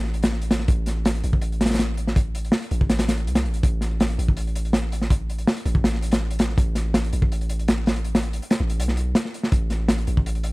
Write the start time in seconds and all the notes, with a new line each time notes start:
Already playing: A1
0.04 snare
0.14 closed hi-hat
0.23 snare, closed hi-hat
0.32 snare
0.42 closed hi-hat
0.51 snare, closed hi-hat
0.59 snare
0.68 A1, kick, closed hi-hat
0.86 snare, closed hi-hat
1.05 snare, closed hi-hat
1.15 closed hi-hat
1.24 A1, closed hi-hat
1.33 kick
1.41 closed hi-hat
1.52 closed hi-hat
1.61 snare, closed hi-hat
1.66 snare, closed hi-hat
1.70 snare, closed hi-hat
1.74 snare, closed hi-hat
1.79 snare, closed hi-hat
1.97 closed hi-hat
2.07 snare
2.16 kick, closed hi-hat
2.35 closed hi-hat
2.45 closed hi-hat
2.52 snare, open hi-hat
2.63 closed hi-hat
2.71 A1, closed hi-hat
2.81 kick
2.90 snare, closed hi-hat
2.99 snare, closed hi-hat
3.08 snare, closed hi-hat
3.17 closed hi-hat
3.27 C2, closed hi-hat
3.35 snare, closed hi-hat
3.45 A1, closed hi-hat
3.54 closed hi-hat
3.63 A1, kick, closed hi-hat
3.81 snare, closed hi-hat
4.00 snare, closed hi-hat
4.10 closed hi-hat
4.18 A1, closed hi-hat
4.28 kick
4.37 closed hi-hat
4.47 closed hi-hat
4.56 closed hi-hat
4.65 closed hi-hat
4.73 snare, closed hi-hat
4.92 closed hi-hat
5.02 snare
5.10 kick, closed hi-hat
5.30 closed hi-hat
5.38 closed hi-hat
5.47 snare, open hi-hat
5.57 closed hi-hat
5.66 A1, closed hi-hat
5.75 kick
5.84 snare, closed hi-hat
5.93 snare
6.02 closed hi-hat
6.11 snare, closed hi-hat
6.20 snare
6.31 closed hi-hat
6.39 snare, closed hi-hat
6.49 snare
6.58 A1, kick, closed hi-hat
6.75 snare, closed hi-hat
6.94 snare, closed hi-hat
7.04 closed hi-hat
7.13 A1, closed hi-hat
7.22 kick
7.32 closed hi-hat
7.41 closed hi-hat
7.49 closed hi-hat
7.59 closed hi-hat
7.68 snare, closed hi-hat
7.86 snare, open hi-hat
7.96 closed hi-hat
8.05 closed hi-hat
8.15 snare, open hi-hat
8.23 closed hi-hat
8.33 closed hi-hat
8.42 closed hi-hat
8.51 snare, closed hi-hat
8.60 A1
8.70 closed hi-hat
8.79 B1, closed hi-hat
8.88 snare
8.97 closed hi-hat
9.15 snare, closed hi-hat
9.25 snare
9.34 closed hi-hat
9.43 snare
9.52 A1, kick, closed hi-hat
9.70 snare, closed hi-hat
9.88 snare, closed hi-hat
9.98 closed hi-hat
10.07 A1, closed hi-hat
10.17 kick
10.26 closed hi-hat
10.35 closed hi-hat
10.43 closed hi-hat